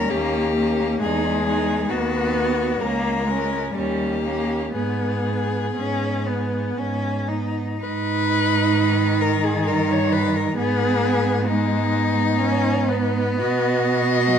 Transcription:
0.00 0.11 G3 medium
0.00 0.55 C#4 medium
0.00 0.12 A#4 loud
0.10 0.91 D#2 medium
0.10 0.55 A#3 medium
0.10 1.00 G4 loud
0.56 1.02 A#3 medium
0.56 1.01 C#4 medium
1.00 1.80 E2 medium
1.00 1.91 G#3 medium
1.00 1.45 D#4 medium
1.00 1.91 G#4 loud
1.46 1.89 D#4 medium
1.89 2.70 D#2 medium
1.89 2.82 B3 medium
1.89 2.82 F#4 loud
2.34 2.79 B3 medium
2.80 3.64 C#2 medium
2.80 3.29 A#3 medium
2.80 3.27 C#4 medium
2.80 3.76 A#4 loud
3.27 3.75 G#3 medium
3.27 3.74 C#4 medium
3.74 4.62 D#2 medium
3.74 4.21 G3 medium
3.74 4.23 C#4 medium
3.74 4.74 G4 medium
4.22 4.72 A#3 medium
4.22 4.73 C#4 medium
4.73 5.64 G#2 medium
4.73 5.64 B3 medium
4.73 5.26 B3 medium
4.73 7.26 G#4 medium
5.27 6.26 B3 medium
5.76 6.65 G#2 medium
5.76 6.28 C#4 medium
6.26 6.79 B3 medium
6.26 7.28 B3 medium
6.77 7.67 G#2 medium
6.77 7.30 C#4 medium
7.28 7.79 B3 medium
7.28 7.79 D#4 medium
7.79 9.68 G#2 medium
7.79 9.63 D#4 medium
7.79 9.22 B4 loud
8.72 10.52 D#3 medium
9.21 9.45 A#4 loud
9.44 9.68 G#4 medium
9.67 10.57 G2 medium
9.67 10.55 D#4 medium
9.67 9.93 A#4 loud
9.91 10.14 C#5 loud
10.12 10.37 B4 loud
10.36 10.57 A#4 medium
10.57 13.41 G#2 medium
10.57 11.45 B3 medium
10.57 11.49 B3 medium
10.57 11.47 G#4 loud
11.46 12.38 G#3 medium
11.46 13.41 B3 medium
11.46 13.39 D#4 loud
12.39 12.90 C#4 medium
12.88 14.31 B3 medium
13.39 14.39 B2 medium
13.39 14.39 F#4 medium
13.39 14.39 D#5 loud
14.30 14.39 F#3 medium

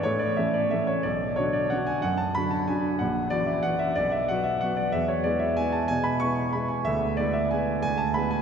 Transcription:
0.03 0.37 A2 medium
0.03 0.21 C#5 medium
0.19 0.37 D5 medium
0.37 0.69 E3 soft
0.37 0.70 A3 soft
0.37 0.70 C#4 soft
0.37 0.55 E5 medium
0.53 0.72 D5 medium
0.71 1.02 E3 soft
0.71 1.02 A3 soft
0.71 1.03 C#4 soft
0.71 0.88 E5 medium
0.87 1.04 C#5 medium
1.03 1.37 B1 medium
1.03 1.37 D5 medium
1.36 1.69 D3 soft
1.36 1.69 D4 medium
1.36 1.69 F#4 medium
1.36 1.54 C#5 medium
1.53 1.71 D5 medium
1.70 2.01 D3 soft
1.70 2.02 D4 soft
1.70 2.02 F#4 soft
1.70 1.88 F#5 medium
1.87 2.04 G#5 medium
2.02 2.35 F#2 medium
2.02 2.19 F#5 medium
2.18 2.35 A5 medium
2.35 2.66 D3 soft
2.35 2.66 D4 soft
2.35 2.66 F#4 medium
2.35 2.52 B5 loud
2.51 2.68 A5 medium
2.68 2.98 D3 soft
2.68 2.98 D4 soft
2.68 2.98 F#4 soft
2.68 3.00 G#5 medium
2.99 3.31 A#1 medium
2.99 3.31 F#5 medium
3.30 3.62 E3 soft
3.30 3.62 C#4 soft
3.30 3.62 F#4 medium
3.30 3.47 D5 medium
3.46 3.64 E5 medium
3.63 3.94 E3 soft
3.63 3.94 C#4 soft
3.63 3.94 F#4 soft
3.63 3.80 F#5 medium
3.79 3.96 E5 medium
3.96 4.29 B1 medium
3.96 4.12 D5 loud
4.12 4.29 E5 medium
4.28 4.60 F#3 soft
4.28 4.60 B3 soft
4.28 4.60 F#4 medium
4.28 4.45 F#5 medium
4.44 4.61 E5 medium
4.61 4.91 F#3 soft
4.61 4.92 B3 soft
4.61 4.92 F#4 soft
4.61 4.78 F#5 medium
4.77 4.93 D5 medium
4.92 5.25 E2 medium
4.92 5.09 E5 medium
5.08 5.25 C#5 medium
5.24 5.55 G#3 medium
5.24 5.55 B3 soft
5.24 5.55 E4 medium
5.24 5.41 D5 medium
5.39 5.57 E5 medium
5.57 5.87 G#3 soft
5.57 5.88 B3 soft
5.57 5.88 E4 soft
5.57 5.74 G#5 medium
5.72 5.89 A5 medium
5.88 6.21 B2 medium
5.88 6.05 G#5 loud
6.04 6.21 B5 medium
6.20 6.51 G#3 soft
6.20 6.51 B3 soft
6.20 6.52 E4 medium
6.20 6.54 C#6 loud
6.53 6.83 G#3 soft
6.53 6.83 B3 soft
6.53 6.84 E4 medium
6.53 6.70 B5 medium
6.69 6.85 G#5 medium
6.85 7.18 D2 medium
6.85 7.18 E5 loud
7.17 7.49 G#3 soft
7.17 7.49 B3 soft
7.17 7.49 E4 medium
7.17 7.34 D5 medium
7.33 7.51 E5 medium
7.51 7.81 G#3 soft
7.51 7.82 B3 soft
7.51 7.82 E4 soft
7.51 7.81 G#5 medium
7.82 8.15 D2 medium
7.82 7.99 G#5 loud
7.98 8.15 A5 medium
8.14 8.42 G#3 medium
8.14 8.42 B3 soft
8.14 8.42 E4 soft
8.14 8.32 B5 medium
8.31 8.42 G#5 medium

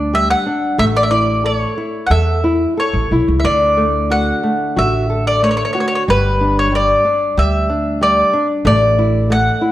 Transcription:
0.00 0.33 D2 medium
0.00 0.12 D4 soft
0.00 0.15 D5 medium
0.13 0.45 G3 medium
0.13 0.30 E5 loud
0.30 0.79 F#5 loud
0.46 0.78 D4 medium
0.78 1.64 A1 medium
0.78 3.41 A3 medium
0.78 0.84 E5 loud
0.96 1.03 D5 medium
1.03 1.09 E5 medium
1.11 1.43 E4 soft
1.11 1.45 D5 medium
1.44 1.76 A4 soft
1.44 2.06 C#5 medium
1.78 2.09 E4 medium
2.07 2.65 E2 medium
2.07 2.43 A4 medium
2.07 2.12 F#5 medium
2.11 2.79 E5 medium
2.44 2.76 E4 medium
2.77 3.10 A4 soft
2.77 3.26 C#5 medium
2.93 3.09 A1 medium
3.11 3.26 B1 medium
3.11 3.44 E4 soft
3.28 3.43 C#2 medium
3.40 3.46 E5 medium
3.44 4.30 D2 medium
3.44 6.04 D3 medium
3.44 4.13 D5 medium
3.77 4.10 A3 soft
4.10 4.43 F#4 soft
4.10 4.79 F#5 medium
4.43 4.76 A3 soft
4.76 5.62 A1 medium
4.76 5.08 F#4 medium
4.76 5.27 E5 medium
5.10 5.41 A4 soft
5.27 5.43 D5 medium
5.42 5.74 A3 medium
5.42 5.50 C#5 medium
5.51 5.56 C#5 medium
5.57 5.64 C#5 medium
5.65 5.72 C#5 medium
5.73 6.07 F#4 medium
5.73 5.79 C#5 medium
5.80 5.87 C#5 medium
5.88 5.94 C#5 medium
5.95 6.03 C#5 medium
6.08 6.92 G1 medium
6.08 6.71 G3 medium
6.08 6.59 B4 loud
6.41 6.72 D4 medium
6.59 6.75 C#5 medium
6.72 7.04 G3 soft
6.72 7.38 D5 medium
7.05 7.36 D4 medium
7.37 8.21 D2 medium
7.37 7.68 G3 medium
7.37 7.98 E5 medium
7.70 8.00 D4 medium
8.01 8.32 G3 medium
8.01 8.47 D5 medium
8.33 8.64 D4 medium
8.65 9.48 A1 loud
8.65 9.29 A3 medium
8.65 9.32 D5 loud
8.99 9.29 E4 medium
9.30 9.60 A3 medium
9.30 9.72 F#5 loud
9.61 9.72 E4 medium

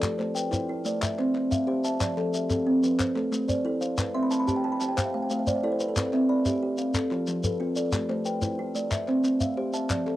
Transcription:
0.00 0.35 A3 medium
0.00 0.36 G4 medium
0.00 0.19 A4 medium
0.00 0.36 D5 medium
0.00 clap medium
0.00 shekere medium
0.18 0.52 A3 medium
0.18 0.68 C5 medium
0.18 clap soft
0.35 0.86 B4 medium
0.35 0.85 G5 medium
0.35 shekere medium
0.51 0.85 E4 medium
0.51 1.02 C5 medium
0.51 clap soft
0.51 shekere medium
0.69 1.02 E4 medium
0.85 1.02 A3 medium
0.85 1.35 D5 medium
0.85 shekere medium
1.02 1.50 E5 medium
1.02 clap medium
1.02 shekere medium
1.19 1.52 C4 medium
1.19 1.67 C5 medium
1.19 clap soft
1.35 1.68 C4 medium
1.35 clap soft
1.51 1.83 E5 medium
1.51 2.01 F5 medium
1.51 shekere medium
1.67 2.01 G4 medium
1.67 2.01 C5 medium
1.84 2.17 E5 medium
1.84 2.34 A5 medium
1.84 shekere medium
2.01 2.34 F3 medium
2.01 2.34 D5 medium
2.01 clap medium
2.01 shekere medium
2.17 2.50 F3 medium
2.17 2.67 A4 medium
2.17 clap soft
2.34 2.83 G4 medium
2.34 2.83 E5 medium
2.34 shekere medium
2.50 2.83 C4 medium
2.50 3.00 A4 medium
2.50 clap soft
2.50 shekere medium
2.67 3.00 C4 medium
2.83 3.00 F3 medium
2.83 3.33 B4 medium
2.83 shekere soft
2.99 3.47 C5 medium
2.99 clap medium
2.99 shekere medium
3.16 3.49 A3 medium
3.16 3.64 A4 medium
3.16 clap soft
3.32 3.65 A3 medium
3.32 clap soft
3.32 shekere medium
3.48 3.80 C5 medium
3.48 3.98 D5 medium
3.48 shekere medium
3.65 3.98 E4 medium
3.65 3.99 A4 medium
3.81 4.15 C5 medium
3.81 4.31 F5 medium
3.81 shekere medium
3.98 4.31 C4 medium
3.98 4.31 B4 medium
3.98 clap medium
3.98 shekere medium
4.14 4.48 C4 medium
4.14 4.64 E5 medium
4.14 4.30 C6 medium
4.23 4.38 B5 medium
4.31 4.46 A5 medium
4.31 4.81 B5 medium
4.31 clap soft
4.31 shekere medium
4.40 4.55 B5 medium
4.48 4.81 G4 medium
4.48 4.63 A5 medium
4.48 shekere medium
4.56 4.72 G5 medium
4.64 4.97 G4 medium
4.64 4.80 A5 medium
4.72 4.88 B5 medium
4.80 4.97 C4 medium
4.80 4.96 A5 medium
4.80 clap soft
4.80 shekere soft
4.89 5.04 G5 medium
4.97 5.46 C5 medium
4.97 5.13 F5 medium
4.97 clap medium
4.97 shekere medium
5.05 5.21 E5 medium
5.14 5.47 A3 medium
5.14 5.29 F5 medium
5.23 5.38 G5 medium
5.30 5.63 A3 medium
5.30 5.46 F5 medium
5.30 shekere soft
5.39 5.54 E5 medium
5.47 5.79 C5 medium
5.47 5.62 D5 medium
5.47 shekere medium
5.55 5.70 E5 medium
5.64 5.96 E4 medium
5.64 5.87 A4 medium
5.64 5.79 D5 medium
5.72 5.87 C5 medium
5.80 5.95 B4 medium
5.80 6.13 C5 medium
5.80 shekere medium
5.89 6.03 A4 medium
5.96 6.29 C4 medium
5.96 6.12 B4 medium
5.96 clap medium
5.96 shekere medium
6.05 6.20 A4 medium
6.13 6.46 C4 medium
6.13 6.62 E5 medium
6.13 clap soft
6.29 6.78 D5 medium
6.29 6.78 B5 medium
6.45 6.79 G4 medium
6.45 6.95 E5 medium
6.45 clap soft
6.45 shekere medium
6.63 6.95 G4 medium
6.78 6.95 C4 medium
6.78 7.28 F5 medium
6.78 shekere medium
6.94 7.43 A4 medium
6.94 clap medium
6.94 shekere medium
7.11 7.44 F3 medium
7.11 7.59 F4 medium
7.11 clap soft
7.27 7.61 F3 medium
7.27 clap soft
7.27 shekere soft
7.44 7.76 A4 medium
7.44 7.93 B4 medium
7.44 shekere medium
7.60 7.93 C4 medium
7.60 7.93 F4 medium
7.76 8.10 A4 medium
7.76 8.26 D5 medium
7.76 shekere medium
7.92 8.26 A3 medium
7.92 8.26 G4 medium
7.92 clap medium
7.92 shekere medium
8.09 8.42 A3 medium
8.09 8.59 C5 medium
8.09 clap soft
8.25 8.75 B4 medium
8.25 8.75 G5 medium
8.25 shekere medium
8.42 8.75 E4 medium
8.42 8.92 C5 medium
8.42 clap soft
8.42 shekere medium
8.59 8.92 E4 medium
8.75 8.91 A3 medium
8.75 9.25 D5 medium
8.75 shekere medium
8.91 9.39 E5 medium
8.91 clap medium
8.91 shekere medium
9.08 9.41 C4 medium
9.08 9.56 C5 medium
9.08 clap soft
9.24 9.57 C4 medium
9.24 clap soft
9.24 shekere medium
9.41 9.72 E5 medium
9.41 9.90 F5 medium
9.41 shekere medium
9.57 9.90 G4 medium
9.57 9.90 C5 medium
9.74 10.07 E5 medium
9.74 10.16 A5 medium
9.74 shekere soft
9.90 10.16 F3 medium
9.90 10.16 D5 medium
9.90 clap medium
9.90 shekere medium
10.06 10.16 F3 medium
10.06 10.16 A4 medium
10.06 clap soft

